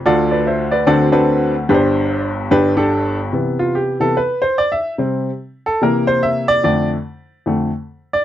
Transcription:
0.06 0.84 D2 medium
0.06 0.84 D3 medium
0.06 0.64 F4 medium
0.06 0.64 A4 medium
0.06 0.30 D5 medium
0.31 0.47 B4 medium
0.31 0.46 D5 medium
0.47 0.71 C5 medium
0.47 0.71 E5 medium
0.71 1.11 B4 medium
0.71 0.86 D5 medium
0.87 1.66 D2 medium
0.87 1.65 D3 medium
0.87 1.07 C4 medium
0.87 1.08 D4 medium
0.87 1.08 F#4 medium
0.87 1.08 A4 medium
0.87 1.08 D5 medium
1.12 1.54 C4 medium
1.12 1.54 D4 medium
1.12 1.54 F#4 medium
1.12 1.54 A4 medium
1.12 1.54 B4 loud
1.69 2.48 G1 medium
1.69 2.48 G2 medium
1.69 2.28 D4 medium
1.69 2.28 G4 medium
1.69 1.76 B4 medium
1.74 2.31 C5 medium
2.51 3.30 G1 medium
2.51 3.30 G2 medium
2.51 2.72 D4 medium
2.51 2.72 G4 medium
2.51 2.72 B4 loud
2.77 3.18 D4 medium
2.77 3.18 G4 medium
2.77 3.19 A4 medium
3.33 3.99 C3 medium
3.33 3.99 E3 soft
3.33 4.00 B3 medium
3.59 3.76 F4 medium
3.75 4.01 G4 medium
4.00 4.15 C3 soft
4.00 4.15 E3 soft
4.00 4.15 B3 medium
4.00 4.17 A4 medium
4.17 4.43 B4 medium
4.42 4.58 C5 medium
4.58 4.71 D5 medium
4.72 4.92 E5 medium
4.98 5.29 C3 soft
4.98 5.29 G3 soft
4.98 5.29 C4 medium
5.66 5.81 A4 medium
5.81 6.60 C3 medium
5.81 6.60 E3 soft
5.81 6.61 A#3 medium
5.81 6.08 A#4 medium
6.07 6.24 C5 loud
6.23 6.49 E5 loud
6.48 6.63 D5 loud
6.64 6.94 F2 medium
6.64 6.94 D3 soft
6.64 6.95 A3 medium
6.64 6.88 D5 medium
7.46 7.69 F2 soft
7.46 7.69 D3 soft
7.46 7.70 A3 medium
8.13 8.25 D5 medium

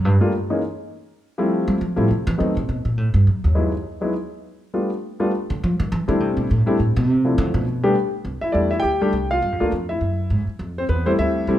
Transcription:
0.05 0.15 G2 medium
0.20 0.31 G3 medium
0.20 0.31 A3 medium
0.20 0.32 A#3 medium
0.20 0.32 D4 medium
0.20 0.32 F4 medium
0.50 0.61 E3 medium
0.50 0.61 G#3 soft
0.50 0.61 A#3 medium
0.50 0.61 C#4 medium
0.50 0.61 D#4 medium
1.38 1.77 F3 medium
1.38 1.77 G3 medium
1.38 1.77 A3 medium
1.38 1.77 C4 medium
1.38 1.77 E4 medium
1.68 1.79 G3 loud
1.81 1.96 F3 medium
1.96 2.08 A2 medium
1.96 2.07 F3 medium
1.96 2.07 G3 medium
1.96 2.08 A3 medium
1.96 2.07 C4 medium
1.96 2.08 E4 medium
2.11 2.26 C3 medium
2.27 2.38 E3 loud
2.38 2.56 D#3 medium
2.38 2.54 F#3 medium
2.38 2.54 A3 soft
2.38 2.54 B3 soft
2.38 2.54 C4 medium
2.38 2.54 D#4 medium
2.57 2.68 C3 medium
2.69 2.84 B2 medium
2.85 2.97 A#2 medium
2.97 3.13 A2 medium
3.14 3.25 G2 medium
3.27 3.44 F#2 medium
3.44 3.82 D#2 medium
3.55 3.71 F#3 medium
3.55 3.71 G#3 soft
3.55 3.71 B3 soft
3.55 3.71 D#4 soft
3.55 3.71 E4 medium
4.01 4.12 F#3 soft
4.01 4.12 G#3 soft
4.01 4.13 B3 medium
4.01 4.13 D#4 soft
4.01 4.13 E4 medium
4.74 4.89 G3 soft
4.74 4.89 A3 soft
4.74 4.89 B3 soft
4.74 4.89 D4 soft
4.74 4.89 F4 medium
5.20 5.30 G3 medium
5.20 5.30 A3 medium
5.20 5.30 B3 medium
5.20 5.30 D4 medium
5.20 5.31 F4 medium
5.50 5.61 D3 medium
5.64 5.79 F3 loud
5.80 5.90 D#3 loud
5.92 6.08 E3 loud
6.08 6.20 D3 medium
6.08 6.46 G3 medium
6.08 6.47 A3 medium
6.08 6.46 C4 medium
6.08 6.46 D4 medium
6.08 6.47 E4 medium
6.20 6.36 C3 medium
6.37 6.48 B2 medium
6.51 6.61 A2 medium
6.66 6.77 G3 medium
6.66 6.77 A3 medium
6.66 6.77 C4 medium
6.66 6.77 D4 medium
6.66 6.77 E4 medium
6.79 6.96 A2 medium
6.96 7.09 B2 loud
7.09 7.37 C3 medium
7.25 7.63 F3 medium
7.25 7.64 A3 soft
7.25 7.64 C4 soft
7.25 7.64 D4 soft
7.25 7.64 E4 medium
7.38 7.53 D3 loud
7.54 7.92 B2 medium
7.83 7.94 G3 medium
7.83 7.94 A3 medium
7.83 7.94 B3 medium
7.83 7.94 D4 medium
7.83 7.94 G4 medium
8.25 8.41 C2 medium
8.41 8.53 E4 medium
8.41 8.53 E5 medium
8.41 muted upright bass stroke soft
8.52 8.83 E2 medium
8.52 8.69 G3 medium
8.52 8.70 A3 soft
8.52 8.70 D4 soft
8.52 8.70 E4 medium
8.52 8.69 D5 medium
8.71 8.83 E4 medium
8.71 8.83 E5 medium
8.80 9.12 D2 medium
8.80 9.01 G4 medium
8.80 9.25 G5 loud
9.01 9.12 G3 medium
9.01 9.12 A3 medium
9.01 9.12 D4 medium
9.01 9.12 G4 medium
9.13 9.41 C2 medium
9.31 9.59 F4 medium
9.31 9.69 F5 medium
9.42 9.52 G2 medium
9.52 9.60 F2 medium
9.60 9.70 D2 medium
9.60 9.70 A3 medium
9.60 9.71 A#3 medium
9.60 9.71 D4 medium
9.60 9.71 F4 medium
9.72 10.00 F2 medium
9.89 10.45 E4 medium
9.89 10.44 E5 medium
10.01 10.29 F#2 medium
10.30 10.47 G#2 medium
10.47 muted upright bass stroke soft
10.59 10.88 F2 medium
10.78 10.84 C4 medium
10.78 10.83 C5 medium
10.89 11.17 E2 medium
10.89 11.07 B3 medium
10.89 11.07 B4 medium
11.06 11.45 G3 medium
11.06 11.45 A3 medium
11.06 11.45 C4 medium
11.06 11.19 E4 medium
11.06 11.11 C5 medium
11.18 11.47 D2 medium
11.18 11.47 E4 medium
11.18 11.59 E5 loud
11.47 11.59 C2 medium
11.47 11.59 G3 medium
11.47 11.59 A3 medium
11.47 11.59 C4 medium
11.47 11.59 E4 medium

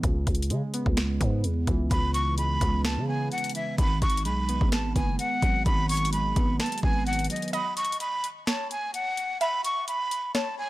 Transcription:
0.03 0.26 C#2 loud
0.03 1.21 C#3 medium
0.03 kick loud
0.03 closed hi-hat medium
0.27 0.52 C#2 loud
0.27 kick medium
0.27 closed hi-hat medium
0.35 closed hi-hat medium
0.43 closed hi-hat medium
0.50 0.62 C#3 loud
0.50 1.68 G#3 medium
0.50 closed hi-hat medium
0.74 1.19 B3 medium
0.74 closed hi-hat medium
0.86 1.19 C#2 loud
0.86 kick medium
0.97 finger snap loud
0.97 snare loud
0.97 closed hi-hat medium
1.21 1.45 G#2 loud
1.21 2.38 B3 medium
1.21 kick medium
1.21 closed hi-hat medium
1.44 1.66 E2 loud
1.44 closed hi-hat medium
1.67 1.90 C#2 loud
1.67 2.85 E3 medium
1.67 kick medium
1.67 closed hi-hat medium
1.91 2.58 C#2 loud
1.91 3.08 C#3 medium
1.91 2.11 B5 medium
1.91 kick loud
1.91 closed hi-hat medium
2.14 2.35 C#6 medium
2.14 closed hi-hat medium
2.38 3.55 G#3 medium
2.38 2.82 B5 medium
2.38 closed hi-hat medium
2.61 2.99 C#2 loud
2.61 3.07 B3 medium
2.61 kick loud
2.61 closed hi-hat medium
2.84 3.05 A5 medium
2.84 finger snap medium
2.84 snare loud
2.84 closed hi-hat medium
2.97 3.30 C#3 loud
3.08 3.78 B3 medium
3.08 3.29 G#5 medium
3.31 3.52 F#5 medium
3.31 closed hi-hat soft
3.38 closed hi-hat soft
3.44 closed hi-hat medium
3.49 closed hi-hat medium
3.55 3.78 E3 medium
3.55 3.76 E5 medium
3.55 closed hi-hat medium
3.78 4.01 G#1 loud
3.78 4.96 D#3 medium
3.78 3.99 B5 loud
3.78 kick loud
3.78 closed hi-hat medium
4.02 4.27 G#1 loud
4.02 4.23 C#6 medium
4.02 kick medium
4.02 closed hi-hat medium
4.10 closed hi-hat medium
4.17 closed hi-hat medium
4.25 4.59 B1 loud
4.25 5.43 G#3 medium
4.25 4.69 B5 medium
4.25 closed hi-hat medium
4.49 4.94 B3 medium
4.49 closed hi-hat medium
4.61 4.94 G#1 loud
4.61 kick medium
4.72 4.93 A5 medium
4.72 finger snap loud
4.72 snare loud
4.72 closed hi-hat medium
4.95 5.18 F#1 loud
4.95 6.13 B3 medium
4.95 5.16 G#5 medium
4.95 kick medium
4.95 closed hi-hat medium
5.19 5.63 F#5 medium
5.19 closed hi-hat medium
5.42 5.65 G#1 loud
5.42 6.60 F#3 medium
5.42 kick medium
5.42 closed hi-hat medium
5.66 6.33 G#1 loud
5.66 6.83 D#3 loud
5.66 5.86 B5 loud
5.66 kick loud
5.66 closed hi-hat medium
5.89 6.10 C#6 medium
5.89 closed hi-hat medium
5.89 open hi-hat medium
5.97 closed hi-hat medium
6.05 closed hi-hat medium
6.13 7.30 G#3 medium
6.13 6.57 B5 medium
6.13 closed hi-hat medium
6.36 6.59 G#1 loud
6.36 6.82 B3 medium
6.36 kick loud
6.36 closed hi-hat medium
6.59 6.80 A5 medium
6.59 finger snap loud
6.59 snare loud
6.59 closed hi-hat soft
6.66 closed hi-hat medium
6.72 closed hi-hat medium
6.78 closed hi-hat medium
6.83 7.28 G#1 loud
6.83 7.53 B3 medium
6.83 7.04 G#5 medium
6.83 kick medium
7.06 7.27 F#5 loud
7.06 closed hi-hat soft
7.13 closed hi-hat medium
7.19 closed hi-hat medium
7.24 closed hi-hat medium
7.30 7.53 F#3 medium
7.30 7.51 D#5 medium
7.30 closed hi-hat medium
7.36 closed hi-hat medium
7.42 closed hi-hat medium
7.48 closed hi-hat soft
7.53 8.43 D#5 loud
7.53 7.74 B5 medium
7.53 closed hi-hat medium
7.77 7.97 C#6 medium
7.77 closed hi-hat medium
7.85 closed hi-hat medium
7.92 closed hi-hat medium
8.00 8.26 B5 medium
8.00 closed hi-hat medium
8.24 closed hi-hat medium
8.47 8.91 C#5 medium
8.47 8.68 A5 medium
8.47 finger snap loud
8.47 snare loud
8.47 closed hi-hat medium
8.71 8.91 G#5 medium
8.71 closed hi-hat medium
8.94 9.38 F#5 medium
8.94 closed hi-hat medium
9.17 closed hi-hat medium
9.41 9.85 E5 loud
9.41 9.62 B5 loud
9.41 closed hi-hat medium
9.64 9.85 C#6 medium
9.64 closed hi-hat medium
9.88 10.32 B5 medium
9.88 closed hi-hat medium
10.11 closed hi-hat medium
10.35 10.70 C#5 medium
10.35 10.55 A5 medium
10.35 finger snap medium
10.35 snare loud
10.35 closed hi-hat medium
10.58 10.70 G#5 medium

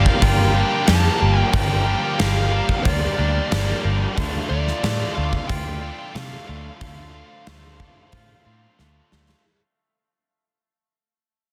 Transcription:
0.00 0.19 G2 medium
0.00 0.87 F3 medium
0.00 0.20 G3 medium
0.00 0.21 A#3 medium
0.00 0.22 D4 medium
0.00 0.22 G4 medium
0.00 4.14 G4 medium
0.00 4.14 A#4 medium
0.00 0.24 F5 medium
0.00 4.13 F5 medium
0.06 kick medium
0.20 0.62 G1 medium
0.20 0.87 G2 medium
0.20 0.87 D3 medium
0.20 0.53 G3 loud
0.20 0.52 A#3 loud
0.20 0.52 D4 medium
0.20 2.85 F4 medium
0.20 0.50 G4 medium
0.20 0.87 G5 medium
0.20 kick loud
0.20 open hi-hat medium
0.52 0.84 G3 medium
0.52 0.85 A#3 medium
0.52 0.86 D4 medium
0.52 0.87 G4 medium
0.85 1.08 F2 medium
0.85 1.53 F3 medium
0.85 1.20 G3 medium
0.85 1.19 A#3 medium
0.85 1.19 D4 medium
0.85 1.17 G4 medium
0.85 1.39 A5 medium
0.85 snare loud
0.85 open hi-hat medium
1.18 1.42 G1 medium
1.18 1.51 G3 medium
1.18 1.52 A#3 medium
1.18 1.53 D4 medium
1.18 1.53 G4 medium
1.39 1.54 G5 medium
1.51 1.94 G1 medium
1.51 2.18 G2 medium
1.51 2.19 D3 loud
1.51 2.19 F3 medium
1.51 1.86 G3 medium
1.51 1.85 A#3 loud
1.51 1.86 D4 medium
1.51 1.84 G4 medium
1.51 2.22 G5 medium
1.51 kick loud
1.51 open hi-hat soft
1.85 2.16 G3 medium
1.85 2.18 A#3 medium
1.85 2.19 D4 medium
1.85 2.19 G4 medium
2.17 2.60 G1 medium
2.17 3.51 F3 medium
2.17 2.52 G3 medium
2.17 2.52 A#3 medium
2.17 2.52 D4 medium
2.17 2.50 G4 medium
2.17 2.83 F5 medium
2.17 snare loud
2.17 open hi-hat soft
2.51 2.83 G3 medium
2.51 2.84 A#3 medium
2.51 2.85 D4 medium
2.51 2.85 G4 medium
2.69 kick medium
2.83 3.06 D2 medium
2.83 3.50 G2 medium
2.83 3.50 D3 medium
2.83 3.18 G3 medium
2.83 3.17 A#3 medium
2.83 3.17 D4 medium
2.83 5.49 F4 medium
2.83 3.15 G4 medium
2.83 3.79 D5 medium
2.83 kick loud
2.83 open hi-hat medium
3.17 3.39 D2 medium
3.17 3.48 G3 medium
3.17 3.49 A#3 medium
3.17 3.51 D4 medium
3.17 3.51 G4 medium
3.49 3.72 G1 medium
3.49 7.01 F3 medium
3.49 3.84 G3 medium
3.49 3.83 A#3 medium
3.49 3.83 D4 medium
3.49 3.81 G4 medium
3.49 snare loud
3.49 open hi-hat medium
3.83 4.05 G1 medium
3.83 4.14 G3 medium
3.83 4.15 A#3 medium
3.83 4.16 D4 medium
3.83 4.14 G4 medium
4.15 4.38 D2 medium
4.15 4.81 D3 loud
4.15 4.50 A3 medium
4.15 4.49 D4 medium
4.15 9.41 F4 medium
4.15 4.47 F4 medium
4.15 6.79 D5 medium
4.15 9.41 C6 medium
4.15 kick loud
4.15 open hi-hat soft
4.48 4.70 D2 medium
4.48 4.82 A3 medium
4.48 4.82 D4 medium
4.48 4.83 F4 medium
4.48 5.14 D5 medium
4.67 snare soft
4.81 5.03 A2 medium
4.81 5.48 D3 medium
4.81 5.17 A3 medium
4.81 5.16 D4 medium
4.81 5.15 F4 medium
4.81 snare loud
4.81 open hi-hat medium
5.15 5.37 D2 medium
5.15 5.49 A3 soft
5.15 5.50 D4 medium
5.15 5.51 F4 medium
5.15 5.49 F5 medium
5.33 kick medium
5.48 5.90 D2 medium
5.48 6.14 D3 medium
5.48 5.84 A3 medium
5.48 5.82 D4 medium
5.48 5.81 F4 medium
5.48 6.16 G5 loud
5.48 kick loud
5.48 open hi-hat medium
5.82 6.15 A3 medium
5.82 7.47 C4 medium
5.82 6.16 D4 medium
5.82 6.17 F4 medium
6.14 6.35 C3 medium
6.14 6.80 D3 medium
6.14 6.50 A3 medium
6.14 6.48 D4 medium
6.14 6.47 F4 medium
6.14 6.46 F5 medium
6.14 snare loud
6.14 open hi-hat medium
6.47 6.69 D2 medium
6.47 6.80 A3 medium
6.47 6.81 D4 medium
6.47 6.82 F4 medium
6.47 8.75 F5 medium
6.80 7.21 D2 medium
6.80 7.44 D3 medium
6.80 7.14 A3 medium
6.80 7.13 D4 medium
6.80 7.12 F4 medium
6.80 9.42 C5 medium
6.80 kick medium
6.80 open hi-hat soft
7.13 7.45 A3 medium
7.13 7.46 D4 medium
7.13 7.47 F4 medium
7.45 7.87 D2 medium
7.45 8.11 D3 medium
7.45 7.81 A3 medium
7.45 7.79 D4 medium
7.45 7.78 F4 medium
7.45 snare loud
7.45 open hi-hat soft
7.79 8.12 A3 soft
7.79 8.13 D4 medium
7.79 8.13 F4 medium
7.79 kick medium
8.12 8.33 A2 medium
8.12 8.76 D3 medium
8.12 8.46 A3 medium
8.12 8.44 D4 medium
8.12 8.43 F4 medium
8.12 kick loud
8.12 open hi-hat soft
8.45 8.66 A2 medium
8.45 8.77 A3 soft
8.45 9.45 C4 medium
8.45 8.78 D4 medium
8.45 8.79 F4 medium
8.77 9.00 D2 medium
8.77 9.42 D3 medium
8.77 9.12 A3 medium
8.77 9.11 D4 medium
8.77 9.09 F4 medium
8.77 snare medium
9.11 9.32 D2 medium
9.11 9.44 A3 soft
9.11 9.43 D4 medium
9.11 9.42 F4 medium
9.11 snare medium
9.29 snare medium

